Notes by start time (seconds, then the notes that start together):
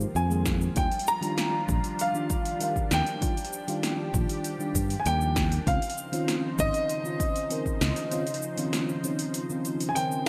Already playing: D#3 F3 G#3 A#3 C4 F4 G4
0.01 shaker
0.15 F2 G#5, shaker
0.30 D#3 G#3 A#3 G#4, shaker
0.46 kick, snare, shaker
0.61 shaker
0.75 D#2 D#3 G3 D4 F4 G5, kick, open hi-hat, shaker
0.92 open hi-hat, shaker
0.99 open hi-hat
1.07 A#5, shaker
1.21 D#3 G3 D4 F4, open hi-hat, shaker
1.38 snare, open hi-hat, shaker
1.67 A#1 D#3 G3 D4 F4, kick, shaker
1.84 open hi-hat, shaker
1.99 F5, open hi-hat, shaker
2.13 D#3 G3 D4 F4, shaker
2.30 kick, open hi-hat, shaker
2.45 open hi-hat, shaker
2.59 D#3 G3 D4 A#4 F5, open hi-hat, shaker
2.76 kick, shaker
2.91 D#2 G5, snare, shaker
3.06 open hi-hat, shaker
3.21 D#3 G3 D4 F4 G4, kick, open hi-hat, shaker
3.37 open hi-hat, shaker
3.45 open hi-hat
3.53 shaker
3.68 D#3 G3 D4 F4, open hi-hat, shaker
3.83 snare, open hi-hat, shaker
4.13 A#1 D#3 G3 D4 F4, kick, shaker
4.29 open hi-hat, shaker
4.44 open hi-hat, shaker
4.59 D#3 G3 D4 F4, shaker
4.75 G2, kick, open hi-hat, shaker
4.90 open hi-hat, shaker
5.00 G#5
5.05 D#2 D#3 G3 D4 A#4 G5, open hi-hat, shaker
5.21 shaker
5.36 kick, snare, shaker
5.52 open hi-hat, shaker
5.66 C#2 C#3 D#3 F3 C4 C#4 D#4 F4 C5 F5, kick, open hi-hat, shaker
5.82 open hi-hat, shaker
5.90 open hi-hat
5.98 shaker
6.12 D#3 C4 C#4 F4, open hi-hat, shaker
6.28 snare, open hi-hat, shaker
6.58 G#1 D#3 C4 C#4 D#4 D#5, kick, shaker
6.74 open hi-hat, shaker
6.89 open hi-hat, shaker
7.04 D#3 C4 C#4 F4, shaker
7.20 kick, open hi-hat, shaker
7.36 open hi-hat, shaker
7.50 D#3 C4 C#4 A#4, open hi-hat, shaker
7.66 kick, shaker
7.81 C#2, snare, shaker
7.96 open hi-hat, shaker
8.11 D#3 C4 C#4 F4, open hi-hat, shaker
8.27 open hi-hat, shaker
8.34 open hi-hat
8.42 shaker
8.57 D#3 C4 C#4 F4, open hi-hat, shaker
8.73 snare, open hi-hat, shaker
8.89 shaker
9.04 D#3 C4 C#4 D#4, open hi-hat, shaker
9.19 open hi-hat, shaker
9.34 open hi-hat, shaker
9.50 D#3 C4 C#4 F4, shaker
9.65 open hi-hat, shaker
9.80 open hi-hat, shaker
9.89 G#5
9.95 D#3 C4 C#4 A#4 G5, open hi-hat, shaker
10.12 shaker